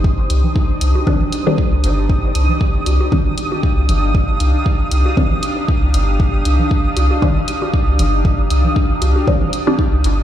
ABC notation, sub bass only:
X:1
M:4/4
L:1/16
Q:"Swing 16ths" 1/4=117
K:Cm
V:1 name="Sub bass" clef=bass
G,,,2 C,, z3 C,, z6 C,, G,,,2- | G,,,2 C,, z3 C,, z6 C,, G,,,2- | G,,,2 C,, z3 C,, z6 C,, G,,,2- | G,,,2 C,, z3 C,, z6 C,, G,,,2- |
G,,,2 C,, z3 C,, z6 C,, G,,,2 |]